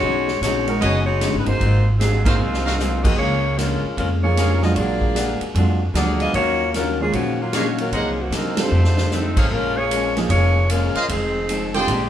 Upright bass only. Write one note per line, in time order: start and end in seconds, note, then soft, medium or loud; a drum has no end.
0.03 0.39 B1 medium
0.41 0.78 A#1 medium
0.81 1.30 F#1 medium
1.34 1.46 G#1 medium
1.46 1.59 G1 medium
1.61 2.36 G#1 medium
2.39 3.14 C2 medium
3.18 3.79 C#2 medium
3.83 muted upright bass stroke soft
3.97 4.72 F2 medium
4.76 5.37 A#1 medium
5.41 muted upright bass stroke soft
5.55 5.92 F2 loud
5.94 6.31 D2 medium
6.34 7.09 D#2 medium
7.12 7.88 A#2 medium
7.92 8.30 C2 medium
8.30 8.68 C3 medium
8.71 9.33 F2 medium
9.37 9.50 A1 medium
9.50 10.26 A#1 medium
10.29 10.91 F1 medium
10.94 muted upright bass stroke soft
11.09 11.84 F1 medium
11.87 12.09 A#1 medium